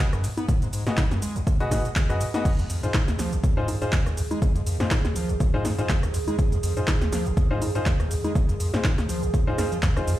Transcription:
0.13 acid bass F#2, cross-stick, shaker
0.24 acid bass B2, open hi-hat, shaker
0.37 acid bass B3, closed hi-hat, high conga, shaker
0.49 acid bass G#2, kick, closed hi-hat, shaker
0.62 acid bass G#2, closed hi-hat, shaker
0.73 acid bass G#2, open hi-hat, shaker
0.87 acid bass B2, grand piano F#4 G#4 B4 D#5, snare, closed hi-hat, shaker
0.97 acid bass C#3, kick, clap, closed hi-hat, high conga, shaker
1.11 acid bass F#2, snare, closed hi-hat, shaker
1.22 acid bass G#3, open hi-hat, shaker
1.36 acid bass G#1, closed hi-hat, shaker
1.47 acid bass G#2, kick, closed hi-hat, shaker
1.60 acid bass B2, grand piano F#4 G#4 B4 D#5, closed hi-hat
1.71 acid bass G#2, grand piano F#4 G#4 B4 D#5, kick, cross-stick, snare, open hi-hat, high conga, shaker
1.85 acid bass B2, closed hi-hat, shaker
1.96 acid bass C#3, kick, clap, closed hi-hat, shaker
2.10 acid bass F#2, grand piano F#4 G#4 B4 D#5, cross-stick, shaker
2.21 acid bass B2, open hi-hat, shaker
2.34 acid bass B3, grand piano F#4 G#4 B4 D#5, snare, closed hi-hat, high conga, shaker
2.45 acid bass F2, ambient pad F2 D#3 G#4, kick, closed hi-hat, crash, shaker
2.59 acid bass F2, closed hi-hat, shaker
2.70 acid bass F2, open hi-hat, shaker
2.83 acid bass G#2, grand piano D#4 F4 G#4 C5, closed hi-hat, shaker
2.94 acid bass A#2, kick, clap, closed hi-hat, high conga, shaker
3.08 acid bass D#2, snare, closed hi-hat, shaker
3.19 acid bass F3, snare, open hi-hat, shaker
3.32 acid bass F1, closed hi-hat, shaker
3.43 acid bass F2, kick, closed hi-hat, shaker
3.57 acid bass G#2, grand piano D#4 F4 G#4 C5
3.68 acid bass F2, open hi-hat, high conga, shaker
3.82 acid bass G#2, grand piano D#4 F4 G#4 C5, closed hi-hat, shaker
3.92 acid bass F2, kick, clap, closed hi-hat, shaker
4.06 acid bass D#2, cross-stick, shaker
4.17 acid bass G#2, open hi-hat, shaker
4.31 acid bass G#3, closed hi-hat, high conga, shaker
4.42 acid bass F2, kick, closed hi-hat, shaker
4.55 acid bass F2, closed hi-hat, shaker
4.66 acid bass F2, open hi-hat, shaker
4.80 acid bass G#2, grand piano D#4 F4 G#4 C5, snare, closed hi-hat, shaker
4.91 acid bass A#2, kick, clap, closed hi-hat, high conga, shaker
5.05 acid bass D#2, snare, closed hi-hat, shaker
5.16 acid bass F3, open hi-hat, shaker
5.29 acid bass F1, closed hi-hat, shaker
5.40 acid bass F2, kick, closed hi-hat, shaker
5.54 acid bass G#2, grand piano D#4 F4 G#4 C5
5.65 acid bass F2, snare, open hi-hat, high conga, shaker
5.78 acid bass G#2, grand piano D#4 F4 G#4 C5, closed hi-hat, shaker
5.89 acid bass F2, kick, clap, closed hi-hat, shaker
6.03 acid bass D#2, cross-stick, shaker
6.14 acid bass G#2, open hi-hat, shaker
6.28 acid bass G#3, closed hi-hat, high conga, shaker
6.39 acid bass F2, kick, closed hi-hat, shaker
6.52 acid bass F2, closed hi-hat, shaker
6.63 acid bass F2, open hi-hat, shaker
6.77 acid bass G#2, grand piano D#4 F4 G#4 C5, closed hi-hat, shaker
6.87 acid bass A#2, kick, clap, closed hi-hat, high conga, shaker
7.01 acid bass D#2, snare, closed hi-hat, shaker
7.12 acid bass F3, snare, open hi-hat, shaker
7.26 acid bass F1, closed hi-hat, shaker
7.37 acid bass F2, kick, closed hi-hat, shaker
7.51 acid bass G#2, grand piano D#4 F4 G#4 C5
7.62 acid bass F2, open hi-hat, high conga, shaker
7.75 acid bass G#2, grand piano D#4 F4 G#4 C5, closed hi-hat, shaker
7.86 acid bass F2, kick, clap, closed hi-hat, shaker
8.00 acid bass D#2, cross-stick, shaker
8.11 acid bass G#2, open hi-hat, shaker
8.24 acid bass G#3, closed hi-hat, high conga, shaker
8.35 acid bass F2, kick, closed hi-hat, shaker
8.49 acid bass F2, closed hi-hat, shaker
8.60 acid bass F2, open hi-hat, shaker
8.74 acid bass G#2, grand piano D#4 F4 G#4 C5, snare, closed hi-hat, shaker
8.84 acid bass A#2, kick, clap, closed hi-hat, high conga, shaker
8.98 acid bass D#2, snare, closed hi-hat, shaker
9.09 acid bass F3, open hi-hat, shaker
9.23 acid bass F1, closed hi-hat, shaker
9.34 acid bass F2, kick, closed hi-hat, shaker
9.47 acid bass G#2, grand piano D#4 F4 G#4 C5
9.58 acid bass F2, grand piano D#4 F4 G#4 C5, cross-stick, snare, open hi-hat, high conga, shaker
9.72 acid bass F3, closed hi-hat, shaker
9.83 acid bass F2, kick, clap, closed hi-hat, shaker
9.96 acid bass F2, grand piano D#4 F4 G#4 C5, cross-stick, shaker
10.08 acid bass F2, open hi-hat, shaker

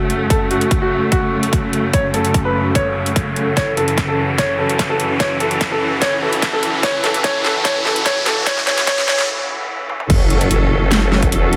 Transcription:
Already playing: string section F#2 C#3 A3, ambient pad C#4 F#4 A4 F#5, grand piano F#4, riser
0.10 closed hi-hat
0.30 grand piano A4, kick, closed hi-hat
0.51 grand piano F#4, closed hi-hat
0.61 closed hi-hat
0.71 kick, closed hi-hat
0.82 grand piano F#4
1.12 grand piano F#4, kick, closed hi-hat
1.43 closed hi-hat
1.53 kick, closed hi-hat
1.73 closed hi-hat
1.93 grand piano C#5, kick, closed hi-hat
2.14 grand piano A4, closed hi-hat
2.25 closed hi-hat
2.34 kick, closed hi-hat
2.45 grand piano B4
2.75 grand piano C#5, kick, closed hi-hat
3.06 closed hi-hat
3.16 kick, closed hi-hat
3.36 closed hi-hat
3.57 string section E3, grand piano C#5, kick, snare, closed hi-hat
3.77 grand piano A4, closed hi-hat
3.88 closed hi-hat
3.98 kick, snare, closed hi-hat
4.08 grand piano A4
4.38 grand piano C#5, kick, snare, closed hi-hat
4.59 grand piano A4
4.69 closed hi-hat
4.79 kick, snare, closed hi-hat
4.90 grand piano A4
5.00 closed hi-hat
5.20 grand piano C#5, kick, snare, closed hi-hat
5.40 grand piano A4, closed hi-hat
5.51 closed hi-hat
5.61 kick, snare, closed hi-hat
5.72 grand piano A4
6.02 grand piano C#5, kick, snare, closed hi-hat
6.22 grand piano A4
6.33 closed hi-hat
6.42 kick, snare, closed hi-hat
6.53 grand piano A4
6.63 closed hi-hat
6.83 grand piano C#5, kick, snare, closed hi-hat
7.04 grand piano A4, snare, closed hi-hat
7.14 closed hi-hat
7.24 grand piano C#5, kick, snare, closed hi-hat
7.44 grand piano A4, snare
7.65 grand piano C#5, kick, snare, closed hi-hat
7.85 grand piano A4, snare
7.96 closed hi-hat
8.06 grand piano C#5, kick, snare, closed hi-hat
8.26 grand piano A4, snare, closed hi-hat
8.46 grand piano C#5, kick, snare, closed hi-hat
8.57 snare
8.67 grand piano C#5, snare, closed hi-hat
8.78 snare, closed hi-hat
8.87 grand piano C#5, kick, snare, closed hi-hat
8.98 snare
9.08 grand piano C#5, snare
9.18 snare
9.89 high tom
10.00 mid tom
10.10 wobble bass F#1, string section F#3 C#4 A4, ambient pad C#4, kick, closed hi-hat, crash, impact
10.30 closed hi-hat
10.37 ambient pad F#4
10.41 closed hi-hat
10.46 ambient pad F#5
10.51 wobble bass F#1, closed hi-hat
10.91 snare, closed hi-hat
11.12 snare
11.23 kick, closed hi-hat
11.32 wobble bass E1, closed hi-hat
11.53 closed hi-hat

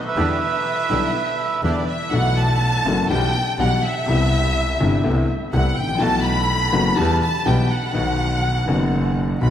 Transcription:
0.04 violin section E5, bandoneon E5
0.08 bandoneon B4
0.16 double bass E2, grand piano E2 D3 E3 G3 B3 E4, bandoneon D4 E4 G4
0.90 grand piano B1 B2 D3 G3 B3 E4, double bass B1, bandoneon D4 E4 G4
1.63 double bass E2, grand piano E2 D3 E3 G3 B3 E4, bandoneon D4 E4 G4, violin section D5
1.89 violin section E5
2.11 double bass B1, grand piano B1 B2 E3 A3 B3 F#4, violin section F#5
2.38 violin section A5
2.85 grand piano F#1 F#2 E3 A3 B3 F#4, double bass F#1
3.09 double bass B1, grand piano B1 B2 E3 G3 B3 G4, violin section G5
3.58 double bass B1, grand piano B1 B2 E3 G3 B3 G4, violin section F#5
3.85 violin section E5
4.06 double bass C2, grand piano C2 C3 G3 B3 E4
4.80 grand piano G1 G2 C3 G3 B3 E4, double bass G1
5.04 grand piano C2 C3 A3 B3 E4, double bass C2
5.53 grand piano C2 C3 A3 B3 E4, double bass C2, violin section F#5
5.77 double bass A1, violin section G5
5.83 grand piano G#1
5.89 grand piano A1
5.95 grand piano A#1 E3
6.00 grand piano B1 B2 A3 B3 F#4, double bass B1, violin section A5
6.24 violin section B5
6.73 grand piano F#1 F#2 E3 A3 B3 F#4, double bass F#1
6.96 grand piano E2 E3 G3 B3 G4, double bass E2, violin section A5
7.22 violin section A5
7.46 grand piano B1 B2 E3 G3 B3 G4, double bass B1, violin section G5
7.72 violin section F#5
7.92 grand piano B1 B2 D#3 F#3 B3, double bass B1
7.96 grand piano F#4
8.66 double bass F#1, grand piano F#1 F#2 D#3 F#3 B3 F#4
9.41 grand piano B1 B2 D#3 F#3 B3 F#4, double bass B1, violin section B5

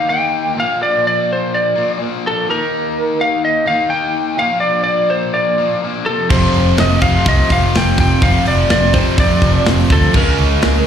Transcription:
0.08 overdriven electric guitar D#3 A#3 D#4, lead electric guitar G5
0.55 overdriven electric guitar A#2 F3 A#3
0.60 lead electric guitar F5
0.83 lead electric guitar D5
1.07 lead electric guitar D5
1.33 lead electric guitar C5
1.54 lead electric guitar D5
1.76 overdriven electric guitar A#2 F3 A#3
1.98 overdriven electric guitar A#2 F3
2.03 overdriven electric guitar A#3
2.27 lead electric guitar A4
2.47 overdriven electric guitar D#3 A#3 D#4, lead electric guitar A#4
3.21 lead electric guitar F5
3.45 lead electric guitar D#5
3.66 overdriven electric guitar A#3 D#4, lead electric guitar F5
3.70 overdriven electric guitar D#3
3.89 overdriven electric guitar D#3 A#3 D#4, lead electric guitar G5
4.38 overdriven electric guitar A#2 F3 A#3, lead electric guitar F5
4.60 lead electric guitar D5
4.84 lead electric guitar D5
5.10 lead electric guitar C5
5.34 lead electric guitar D5
5.58 overdriven electric guitar A#2 F3 A#3
5.82 overdriven electric guitar A#2 F3 A#3
6.06 overdriven electric guitar F2 C3 F3, lead electric guitar A4
6.30 picked electric bass F1, distorted electric guitar F2 C3 F3, lead electric guitar C5, kick, crash
6.54 picked electric bass F1, open hi-hat
6.77 picked electric bass F1, lead electric guitar D#5, snare, open hi-hat
7.00 picked electric bass F1, distorted electric guitar F2 C3 F3, lead electric guitar F5, kick, open hi-hat
7.25 picked electric bass C2, overdriven electric guitar F2 C3 F3, lead electric guitar D#5, kick, open hi-hat
7.49 picked electric bass F1, overdriven electric guitar F2 C3 F3, lead electric guitar F5, kick, open hi-hat
7.75 picked electric bass F1, lead electric guitar G5, snare, open hi-hat
7.96 picked electric bass F1, overdriven electric guitar F2 C3 F3, lead electric guitar G5, kick, open hi-hat
8.22 picked electric bass F1, distorted electric guitar F2 C3 F3, lead electric guitar F5, kick, open hi-hat
8.46 picked electric bass F1, lead electric guitar D5, open hi-hat
8.69 picked electric bass F1, lead electric guitar D5, snare, open hi-hat
8.93 distorted electric guitar C3 F3, lead electric guitar C5, kick, open hi-hat
8.97 distorted electric guitar F2
9.17 overdriven electric guitar F2 C3, picked electric bass F2, lead electric guitar D5, kick, open hi-hat
9.21 overdriven electric guitar F3
9.41 picked electric bass F1, overdriven electric guitar F2 C3 F3, kick, open hi-hat
9.66 picked electric bass F1, snare, open hi-hat
9.90 picked electric bass D2, lead electric guitar A4, kick, open hi-hat
10.13 picked electric bass C#2, overdriven electric guitar C#3 G#3 C#4, distorted electric guitar C#3 G#3, lead electric guitar A#4, kick, crash
10.18 distorted electric guitar C#4
10.38 picked electric bass C#2, open hi-hat
10.62 picked electric bass C#2, snare, open hi-hat

